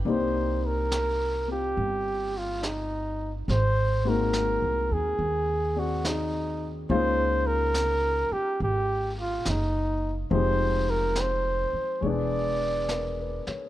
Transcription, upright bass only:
X:1
M:4/4
L:1/8
Q:"Swing" 1/4=70
K:Cm
V:1 name="Upright bass" clef=bass
C,,4 G,,,4 | A,,,2- (3A,,, C,, E,, E,,4 | _D,,3 z A,,,2 ^F,,,2 | F,,,3 z =E,,,3 z |]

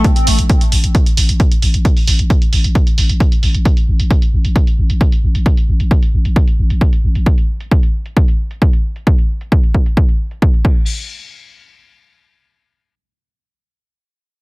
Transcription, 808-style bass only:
X:1
M:4/4
L:1/16
Q:1/4=133
K:C
V:1 name="808-style bass" clef=bass
z2 A,,, A,,, z2 A,,, A,,, z2 A,,, A,,, z2 A,,, A,,, | z2 A,,, A,,, z2 A,,, A,,, z2 A,,, A,,, z2 A,,, A,,, | z2 A,,, A,,, z2 A,,, A,,, z2 A,,, A,,, z2 A,,, A,,, | z2 A,,, A,,, z2 A,,, A,,, z2 A,,, A,,, z2 A,,, A,,, |
z16 | z16 | z16 | z16 |]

